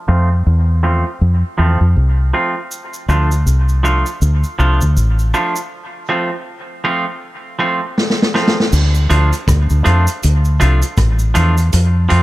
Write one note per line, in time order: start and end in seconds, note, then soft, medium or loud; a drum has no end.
0.08 0.44 F2 medium
0.08 0.29 F3 medium
0.08 0.29 A3 medium
0.08 0.29 C4 medium
0.08 0.29 F4 medium
0.47 1.03 E2 medium
0.83 1.04 F3 medium
0.83 1.04 A3 medium
0.83 1.04 C4 medium
0.83 1.04 F4 medium
1.21 1.42 F2 medium
1.58 1.80 E2 medium
1.58 1.78 F3 medium
1.58 1.79 A3 medium
1.58 1.79 C4 medium
1.58 1.79 F4 medium
1.81 1.95 F2 medium
1.96 2.32 C2 medium
2.33 2.54 F3 medium
2.33 2.54 A3 medium
2.33 2.54 C4 medium
2.33 2.54 F4 medium
2.71 cabasa medium
2.94 cabasa soft
3.09 3.44 D2 medium
3.09 3.29 F3 medium
3.09 3.29 A3 medium
3.09 3.30 D4 medium
3.09 3.30 F4 loud
3.09 cabasa soft
3.31 cabasa medium
3.46 4.03 C2 medium
3.46 cabasa medium
3.69 cabasa medium
3.83 4.04 F3 medium
3.83 4.04 A3 medium
3.83 4.04 D4 medium
3.83 4.05 F4 loud
3.83 cabasa soft
4.06 cabasa medium
4.22 4.43 D2 medium
4.22 cabasa medium
4.44 cabasa medium
4.59 4.80 C2 medium
4.59 4.79 F3 medium
4.59 4.80 A3 medium
4.59 4.80 D4 medium
4.59 4.80 F4 loud
4.59 cabasa soft
4.81 4.96 D2 medium
4.81 cabasa medium
4.97 5.32 A1 medium
4.97 cabasa medium
5.19 cabasa soft
5.34 5.54 F3 medium
5.34 5.54 A3 medium
5.34 5.55 D4 medium
5.34 5.55 F4 medium
5.34 cabasa medium
5.56 cabasa medium
6.09 6.29 F3 medium
6.09 6.29 A3 medium
6.09 6.30 C4 medium
6.09 6.30 F4 medium
6.84 7.05 F3 medium
6.84 7.05 A3 medium
6.84 7.05 C4 medium
6.84 7.05 F4 medium
7.59 7.79 F3 medium
7.59 7.80 A3 medium
7.59 7.80 C4 medium
7.59 7.80 F4 medium
7.98 snare medium
8.10 snare medium
8.22 snare medium
8.34 8.55 F3 medium
8.34 8.55 A3 medium
8.34 8.55 C4 medium
8.34 8.55 F4 medium
8.34 snare medium
8.48 snare medium
8.60 snare medium
8.72 9.08 D2 loud
8.72 crash loud
8.72 cabasa medium
8.95 cabasa medium
9.10 9.31 D2 medium
9.10 9.30 F3 medium
9.10 9.30 A3 medium
9.10 9.30 D4 medium
9.10 9.30 F4 medium
9.10 closed hi-hat medium
9.10 cabasa medium
9.33 closed hi-hat medium
9.33 cabasa medium
9.48 9.69 D2 loud
9.48 kick loud
9.48 cross-stick loud
9.48 closed hi-hat medium
9.48 cabasa medium
9.70 9.84 D2 medium
9.70 cabasa medium
9.84 10.06 F2 medium
9.84 10.05 F3 medium
9.84 10.05 A3 loud
9.84 10.05 D4 medium
9.84 10.05 F4 medium
9.84 closed hi-hat medium
9.84 cabasa medium
10.07 closed hi-hat medium
10.07 cabasa medium
10.23 10.59 D2 medium
10.23 closed hi-hat medium
10.23 cabasa medium
10.45 cabasa medium
10.60 10.82 C2 medium
10.60 10.80 F3 medium
10.60 10.80 A3 medium
10.60 10.80 D4 medium
10.60 10.80 F4 medium
10.60 closed hi-hat medium
10.60 cabasa soft
10.82 closed hi-hat medium
10.82 cabasa medium
10.97 11.33 A1 medium
10.97 kick loud
10.97 cross-stick loud
10.97 closed hi-hat medium
10.97 cabasa medium
11.19 cabasa medium
11.34 11.71 E2 medium
11.34 11.55 F3 medium
11.34 11.55 A3 medium
11.34 11.55 D4 loud
11.34 11.55 F4 loud
11.34 closed hi-hat medium
11.34 cabasa medium
11.58 closed hi-hat medium
11.58 cabasa medium
11.73 12.08 F2 loud
11.73 closed hi-hat loud
11.73 cabasa medium
12.09 12.23 F2 medium
12.09 12.23 F3 medium
12.09 12.23 A3 medium
12.09 12.23 C4 medium
12.09 12.23 F4 medium
12.09 closed hi-hat medium